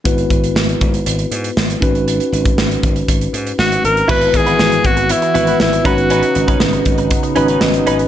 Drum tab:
CC |----------------|----------------|x---------------|----------------|
HH |xxxx-xxxxxxx-xxx|xxxx-xxxxxxx-xxx|-xxx-xxxxxxx-xxx|xxxx-xxxxxxx-xxx|
SD |----o-------o---|----o-------o---|----o-------o---|----o-------o---|
BD |o-o---o-------o-|---o--o-o-------|o-o---o-------o-|---o--o-o-------|